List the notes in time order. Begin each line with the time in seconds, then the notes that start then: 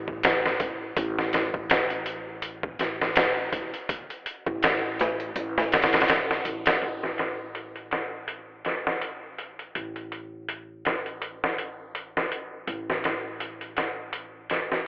Already playing: A1
0.08 kick
0.23 snare, closed hi-hat
0.46 snare
0.60 A1, kick, closed hi-hat
0.97 A1, kick, closed hi-hat
1.19 snare
1.33 snare, closed hi-hat
1.54 A1, kick
1.70 snare, closed hi-hat
1.90 closed hi-hat
2.06 closed hi-hat
2.42 closed hi-hat
2.63 kick
2.79 A1, snare, closed hi-hat
3.01 snare
3.16 snare, closed hi-hat
3.53 A1, kick, closed hi-hat
3.74 closed hi-hat
3.89 kick, closed hi-hat
4.10 closed hi-hat
4.26 closed hi-hat
4.46 A1, kick
4.63 snare, closed hi-hat
4.99 snare, closed hi-hat
5.20 closed hi-hat
5.36 A1, closed hi-hat
5.58 snare
5.72 snare, closed hi-hat
5.82 snare, closed hi-hat
5.93 snare, closed hi-hat
6.00 snare, closed hi-hat
6.08 snare, closed hi-hat
6.31 snare
6.45 A1, closed hi-hat
6.66 snare, closed hi-hat
6.82 A1, closed hi-hat
7.03 snare
7.18 snare, closed hi-hat
7.55 closed hi-hat
7.76 closed hi-hat
7.91 snare, closed hi-hat
8.28 closed hi-hat
8.65 snare, closed hi-hat
8.87 snare
9.01 closed hi-hat
9.38 closed hi-hat
9.59 closed hi-hat
9.75 A1, closed hi-hat
9.96 closed hi-hat
10.12 closed hi-hat
10.49 closed hi-hat
10.85 snare, closed hi-hat
11.06 closed hi-hat
11.22 closed hi-hat
11.44 snare
11.58 closed hi-hat
11.95 closed hi-hat
12.17 snare
12.32 closed hi-hat
12.67 A1, closed hi-hat
12.90 snare
13.04 snare, closed hi-hat
13.40 closed hi-hat
13.61 closed hi-hat
13.77 snare, closed hi-hat
14.13 closed hi-hat
14.50 snare, closed hi-hat
14.72 snare